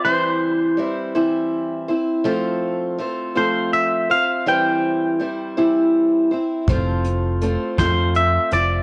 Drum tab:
HH |------|------|------|xxxxxx|
SD |------|------|------|---o--|
BD |------|------|------|o--o--|